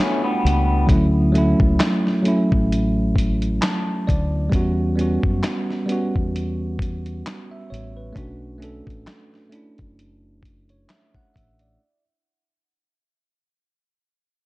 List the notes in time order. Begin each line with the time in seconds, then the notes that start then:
Already playing: A3 B3 C#4 D4 F4 F#4
0.00 snare
0.24 G3 B3
0.45 C#2, closed hi-hat
0.87 D2 F#3 A3 C#4, kick, closed hi-hat
0.92 E4
1.32 F#3 A3, closed hi-hat
1.36 C#4 E4
1.60 C#2, kick
1.80 snare, clap, closed hi-hat
2.07 snare
2.22 F#3 A3, closed hi-hat
2.26 C#4 E4
2.52 A1, kick
2.72 closed hi-hat
3.16 kick, closed hi-hat
3.42 closed hi-hat
3.61 A5, snare, clap, closed hi-hat
4.07 D2 D5, kick, closed hi-hat
4.50 E2 G3 B3 C#4, kick, closed hi-hat
4.56 F#4
4.95 G3 B3 C#4, closed hi-hat
5.01 F#4
5.23 F#2, kick
5.43 snare, clap, closed hi-hat
5.70 snare
5.86 G3 B3, closed hi-hat
5.90 C#4 F#4
6.16 E2, kick
6.36 closed hi-hat
6.79 kick, closed hi-hat
7.06 closed hi-hat
7.26 snare, clap, closed hi-hat
7.51 E5
7.70 A1 C#5, closed hi-hat
7.97 B4
8.13 B1 A3 C#4 D4, kick
8.17 F#4, closed hi-hat
8.58 A3 C#4
8.62 D4 A4, closed hi-hat
8.87 A1, kick, closed hi-hat
9.07 snare, clap, closed hi-hat
9.34 snare
9.49 A3 C#4 D4, closed hi-hat
9.55 E4
9.78 F#1, kick, closed hi-hat
9.99 closed hi-hat
10.43 kick, closed hi-hat
10.69 C#5, closed hi-hat
10.89 E5, snare, clap, closed hi-hat
11.15 F#5, kick
11.34 A1 E5, kick, closed hi-hat
11.59 D5, closed hi-hat